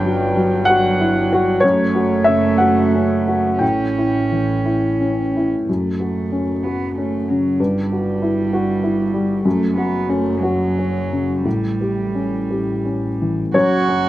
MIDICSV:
0, 0, Header, 1, 4, 480
1, 0, Start_track
1, 0, Tempo, 640342
1, 1217, Time_signature, 6, 3, 24, 8
1, 2194, Tempo, 688073
1, 4114, Tempo, 631579
1, 7474, Tempo, 684932
1, 10269, End_track
2, 0, Start_track
2, 0, Title_t, "Upright piano"
2, 0, Program_c, 0, 0
2, 0, Control_c, 0, 64, 127
2, 0, Note_on_c, 0, 43, 65
2, 0, Note_on_c, 0, 79, 90
2, 44, Note_on_c, 0, 54, 47
2, 266, Note_off_c, 0, 54, 0
2, 277, Note_on_c, 0, 54, 54
2, 470, Note_off_c, 0, 79, 0
2, 489, Note_on_c, 0, 78, 93
2, 517, Note_on_c, 0, 66, 56
2, 653, Note_off_c, 0, 54, 0
2, 750, Note_on_c, 0, 64, 51
2, 891, Note_off_c, 0, 66, 0
2, 993, Note_on_c, 0, 66, 60
2, 1126, Note_off_c, 0, 64, 0
2, 1178, Note_off_c, 0, 78, 0
2, 1185, Note_off_c, 0, 43, 0
2, 1201, Note_on_c, 0, 73, 86
2, 1223, Note_off_c, 0, 66, 0
2, 1229, Note_on_c, 0, 42, 63
2, 1231, Control_c, 0, 64, 0
2, 1363, Control_c, 0, 64, 127
2, 1460, Note_on_c, 0, 66, 48
2, 1659, Note_off_c, 0, 73, 0
2, 1682, Note_on_c, 0, 76, 80
2, 1707, Note_on_c, 0, 49, 49
2, 1847, Note_off_c, 0, 66, 0
2, 1918, Note_off_c, 0, 76, 0
2, 1933, Note_on_c, 0, 78, 67
2, 1947, Note_on_c, 0, 66, 49
2, 2098, Note_off_c, 0, 49, 0
2, 2208, Note_on_c, 0, 61, 45
2, 2336, Note_off_c, 0, 66, 0
2, 2437, Note_on_c, 0, 66, 45
2, 2581, Note_off_c, 0, 61, 0
2, 2638, Note_off_c, 0, 78, 0
2, 2649, Note_off_c, 0, 42, 0
2, 2654, Note_on_c, 0, 79, 64
2, 2664, Note_on_c, 0, 45, 43
2, 2675, Note_off_c, 0, 66, 0
2, 2687, Control_c, 0, 64, 0
2, 2821, Control_c, 0, 64, 127
2, 2928, Note_on_c, 0, 64, 37
2, 3166, Note_on_c, 0, 52, 38
2, 3311, Note_off_c, 0, 64, 0
2, 3365, Note_off_c, 0, 79, 0
2, 3397, Note_on_c, 0, 64, 36
2, 3548, Note_off_c, 0, 52, 0
2, 3642, Note_on_c, 0, 61, 39
2, 3783, Note_off_c, 0, 64, 0
2, 3893, Note_on_c, 0, 64, 37
2, 4022, Note_off_c, 0, 61, 0
2, 4081, Note_off_c, 0, 45, 0
2, 4119, Note_off_c, 0, 64, 0
2, 4122, Note_on_c, 0, 42, 39
2, 4127, Control_c, 0, 64, 0
2, 4271, Control_c, 0, 64, 127
2, 4357, Note_on_c, 0, 66, 27
2, 4601, Note_on_c, 0, 61, 35
2, 4746, Note_off_c, 0, 66, 0
2, 4852, Note_on_c, 0, 66, 33
2, 4988, Note_off_c, 0, 61, 0
2, 5103, Note_on_c, 0, 61, 36
2, 5233, Note_off_c, 0, 66, 0
2, 5348, Note_on_c, 0, 49, 34
2, 5479, Note_off_c, 0, 61, 0
2, 5540, Note_off_c, 0, 42, 0
2, 5573, Note_on_c, 0, 43, 43
2, 5577, Note_off_c, 0, 49, 0
2, 5579, Control_c, 0, 64, 0
2, 5696, Control_c, 0, 64, 127
2, 5816, Note_on_c, 0, 66, 33
2, 6045, Note_on_c, 0, 64, 38
2, 6189, Note_off_c, 0, 66, 0
2, 6282, Note_on_c, 0, 66, 44
2, 6417, Note_off_c, 0, 64, 0
2, 6509, Note_on_c, 0, 64, 39
2, 6650, Note_off_c, 0, 66, 0
2, 6743, Note_on_c, 0, 55, 46
2, 6884, Note_off_c, 0, 64, 0
2, 6953, Note_off_c, 0, 43, 0
2, 6981, Note_off_c, 0, 55, 0
2, 6981, Note_on_c, 0, 42, 56
2, 6996, Control_c, 0, 64, 0
2, 7101, Control_c, 0, 64, 127
2, 7223, Note_on_c, 0, 66, 40
2, 7467, Note_on_c, 0, 61, 47
2, 7610, Note_off_c, 0, 66, 0
2, 7706, Note_on_c, 0, 66, 47
2, 7842, Note_off_c, 0, 61, 0
2, 7954, Note_on_c, 0, 61, 41
2, 8084, Note_off_c, 0, 66, 0
2, 8194, Note_on_c, 0, 49, 40
2, 8331, Note_off_c, 0, 61, 0
2, 8394, Note_off_c, 0, 42, 0
2, 8421, Note_on_c, 0, 45, 41
2, 8428, Note_off_c, 0, 49, 0
2, 8434, Control_c, 0, 64, 0
2, 8537, Control_c, 0, 64, 127
2, 8670, Note_on_c, 0, 67, 30
2, 8909, Note_on_c, 0, 61, 33
2, 9056, Note_off_c, 0, 67, 0
2, 9157, Note_on_c, 0, 67, 35
2, 9297, Note_off_c, 0, 61, 0
2, 9401, Note_on_c, 0, 61, 30
2, 9545, Note_off_c, 0, 67, 0
2, 9659, Note_on_c, 0, 52, 34
2, 9792, Note_off_c, 0, 61, 0
2, 9855, Note_off_c, 0, 45, 0
2, 9886, Note_on_c, 0, 73, 82
2, 9887, Note_on_c, 0, 42, 58
2, 9892, Note_off_c, 0, 52, 0
2, 9896, Control_c, 0, 64, 0
2, 10028, Control_c, 0, 64, 127
2, 10126, Note_on_c, 0, 61, 46
2, 10269, Note_off_c, 0, 42, 0
2, 10269, Note_off_c, 0, 61, 0
2, 10269, Note_off_c, 0, 73, 0
2, 10269, End_track
3, 0, Start_track
3, 0, Title_t, "Cello"
3, 0, Program_c, 1, 42
3, 0, Note_on_c, 1, 54, 67
3, 1219, Note_on_c, 1, 57, 68
3, 1231, Note_off_c, 1, 54, 0
3, 2672, Note_off_c, 1, 57, 0
3, 2675, Note_on_c, 1, 61, 54
3, 3947, Note_off_c, 1, 61, 0
3, 4107, Note_on_c, 1, 57, 37
3, 4838, Note_on_c, 1, 59, 43
3, 4850, Note_off_c, 1, 57, 0
3, 5075, Note_off_c, 1, 59, 0
3, 5080, Note_on_c, 1, 57, 41
3, 5333, Note_on_c, 1, 54, 39
3, 5344, Note_off_c, 1, 57, 0
3, 5578, Note_on_c, 1, 55, 47
3, 5589, Note_off_c, 1, 54, 0
3, 6966, Note_off_c, 1, 55, 0
3, 6971, Note_on_c, 1, 57, 57
3, 7216, Note_off_c, 1, 57, 0
3, 7222, Note_on_c, 1, 59, 56
3, 7465, Note_on_c, 1, 57, 53
3, 7476, Note_off_c, 1, 59, 0
3, 7687, Note_on_c, 1, 54, 57
3, 7698, Note_off_c, 1, 57, 0
3, 8413, Note_off_c, 1, 54, 0
3, 8419, Note_on_c, 1, 55, 44
3, 9707, Note_off_c, 1, 55, 0
3, 9893, Note_on_c, 1, 66, 80
3, 10269, Note_off_c, 1, 66, 0
3, 10269, End_track
4, 0, Start_track
4, 0, Title_t, "Double bass"
4, 0, Program_c, 2, 43
4, 0, Note_on_c, 2, 31, 66
4, 1217, Note_on_c, 2, 30, 66
4, 1228, Note_off_c, 2, 31, 0
4, 2672, Note_on_c, 2, 33, 51
4, 2682, Note_off_c, 2, 30, 0
4, 4105, Note_off_c, 2, 33, 0
4, 4109, Note_on_c, 2, 30, 42
4, 5562, Note_on_c, 2, 31, 46
4, 5574, Note_off_c, 2, 30, 0
4, 6984, Note_on_c, 2, 30, 58
4, 6995, Note_off_c, 2, 31, 0
4, 8429, Note_on_c, 2, 33, 44
4, 8440, Note_off_c, 2, 30, 0
4, 9887, Note_off_c, 2, 33, 0
4, 9890, Note_on_c, 2, 30, 62
4, 10269, Note_off_c, 2, 30, 0
4, 10269, End_track
0, 0, End_of_file